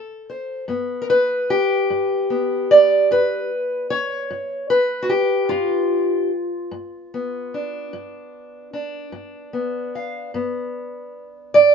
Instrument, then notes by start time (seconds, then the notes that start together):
steel-string acoustic guitar
Already playing: D3 A4
0.30 C5
0.68 G2 B3
1.02 A#4
1.10 B4
1.50 G4
1.90 G2
2.30 B3
2.71 D5
3.11 G2 B4
3.90 C#5
4.31 G2
4.70 B4
5.02 F#4
5.09 G4
5.49 G2 F4
6.71 G2
7.14 B3
7.54 D4
7.93 G2
8.73 D4
9.12 G2
9.53 B3
9.95 F5
10.34 G2 B3
11.54 G2 D5